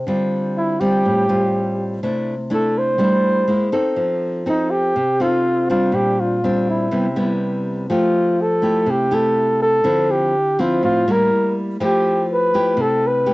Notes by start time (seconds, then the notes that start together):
0.07 D3 G3 C4 F4
0.57 E4
0.80 G3 C4 F4 G4
1.05 A2
1.29 G3 C4 F4
2.03 C3 A3 D4 E4
2.50 A3 D4 E4 A4
2.78 C5
2.98 G3 A3 D4 E4
3.48 G#3 A#3 E4
3.72 C4 D#4 A4
3.96 F3
4.46 C4 D#4 A4
4.71 G4
4.96 C3
5.20 C4 D#4 F4 A4
5.70 G3 C4 D4 F4
5.92 A#2 G4
6.20 F4
6.44 G3 C4 D4
6.70 E4
6.91 C3 G3 B3 E4
7.16 G3 B3 E4
7.90 F3 A3 F4 G4
8.41 A4
8.62 A3 E4 G4
8.86 C3
8.90 G4
9.11 A3 E4 G4 A4
9.62 A4
9.84 D3 F3 C4 E4
10.11 G4
10.59 F3 C4 E4 F4
10.83 A2 F4
11.08 G3 A#3 E4 A#4
11.80 F3 A3 E4 G4
12.32 B4
12.54 A3 E4 G4
12.77 C3
12.81 A4
13.07 B4
13.26 A3 E4 G4